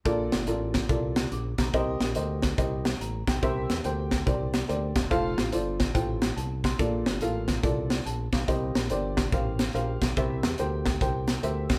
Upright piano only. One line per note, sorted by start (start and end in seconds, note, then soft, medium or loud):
0.05 0.70 A#2 medium
0.05 0.38 F4 loud
0.05 0.38 A4 loud
0.05 0.38 A#4 loud
0.05 0.38 D5 loud
0.47 0.80 F4 medium
0.47 0.80 A4 medium
0.47 0.80 A#4 medium
0.47 0.80 D5 medium
0.89 1.22 F4 medium
0.89 1.22 A4 medium
0.89 1.23 A#4 medium
0.89 1.22 D5 medium
1.31 1.57 D6 medium
1.59 1.99 A#5 medium
1.73 2.39 C3 medium
1.73 2.06 G4 loud
1.73 2.07 A#4 loud
1.73 2.07 C5 loud
1.73 2.07 D#5 loud
2.15 2.48 G4 medium
2.15 2.49 A#4 medium
2.15 2.49 C5 medium
2.15 2.49 D#5 medium
2.58 2.91 G4 medium
2.58 2.91 A#4 medium
2.58 2.91 C5 medium
2.58 2.91 D#5 medium
3.01 3.26 A#5 medium
3.28 3.67 G5 medium
3.42 4.07 C3 medium
3.42 3.75 G4 loud
3.42 3.75 A#4 loud
3.42 3.75 C5 loud
3.42 3.76 E5 loud
3.84 4.17 G4 medium
3.84 4.17 A#4 medium
3.84 4.17 C5 medium
3.84 4.17 G5 medium
4.26 4.59 G4 medium
4.26 4.59 A#4 medium
4.26 4.59 C5 medium
4.26 4.59 D5 medium
4.68 5.01 G4 medium
4.68 5.01 A#4 medium
4.68 5.02 C5 medium
4.68 5.02 D5 medium
5.10 5.43 F4 loud
5.10 5.43 A4 loud
5.10 5.44 C5 medium
5.10 5.44 F5 loud
5.52 5.85 F4 medium
5.52 5.85 A4 medium
5.52 5.86 C5 medium
5.52 5.86 D5 medium
5.94 6.27 F4 medium
5.94 6.27 A4 medium
5.94 6.28 C5 medium
5.94 6.28 G5 medium
6.36 6.62 A5 medium
6.64 7.04 C6 medium
6.79 7.44 A#2 medium
6.79 7.12 F4 medium
6.79 7.12 A4 medium
6.79 7.12 A#4 medium
6.79 7.12 D5 medium
7.21 7.54 F4 medium
7.21 7.54 A4 medium
7.21 7.54 A#4 medium
7.21 7.55 F5 medium
7.63 7.96 F4 medium
7.63 7.96 A4 medium
7.63 7.96 A#4 medium
7.63 7.96 D5 medium
8.06 8.31 A5 medium
8.32 8.73 F5 medium
8.47 9.13 C3 medium
8.47 8.81 G4 medium
8.47 8.81 A#4 medium
8.47 8.81 C5 medium
8.47 8.81 D#5 medium
8.90 9.23 G4 medium
8.90 9.23 A#4 medium
8.90 9.23 C5 medium
8.90 9.23 D5 medium
9.33 9.65 G4 medium
9.33 9.65 A#4 medium
9.33 9.66 C5 medium
9.33 9.66 F5 medium
9.74 10.07 G4 medium
9.74 10.07 A#4 medium
9.74 10.07 C5 medium
9.74 10.07 F5 medium
10.17 10.82 C3 medium
10.17 10.50 G4 medium
10.17 10.50 A#4 medium
10.17 10.50 C5 medium
10.17 10.50 E5 loud
10.59 10.92 G4 medium
10.59 10.92 A#4 medium
10.59 10.92 C5 medium
10.59 10.92 G5 medium
11.02 11.34 G4 medium
11.02 11.34 A#4 medium
11.02 11.34 C5 medium
11.02 11.34 G5 medium
11.43 11.76 G4 medium
11.43 11.76 A#4 medium
11.43 11.76 C5 medium
11.43 11.76 E5 medium